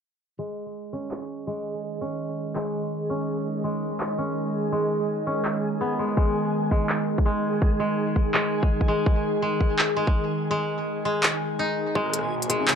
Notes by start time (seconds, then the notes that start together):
0.39 D#3 G#3 G#4 D#5
0.93 C#4
1.11 clap
1.47 G#3
2.01 C#4
2.55 G#3, clap
3.10 C#4
3.64 G#3
4.00 clap
4.18 C#4
4.72 G#3
5.27 C#4
5.45 clap
5.81 B3
5.99 G#3
6.17 G#3 G#4, kick
6.71 G#3, kick
6.89 clap
7.18 kick
7.26 G#3
7.62 kick
7.80 G#3
8.16 kick
8.34 G#3, clap
8.63 kick
8.81 kick
8.88 G#3
9.06 kick
9.42 G#3
9.61 kick
9.79 clap
9.96 G#3
10.07 kick
10.51 G#3
11.05 G#3
11.23 clap
11.59 D#4
11.95 G#1 D#3 G#3 F#4 G#4 D#5, kick, riser
12.06 cross-stick
12.10 cross-stick
12.14 cross-stick, closed hi-hat
12.19 cross-stick
12.42 closed hi-hat
12.50 G#3, kick, closed hi-hat
12.68 G#1, clap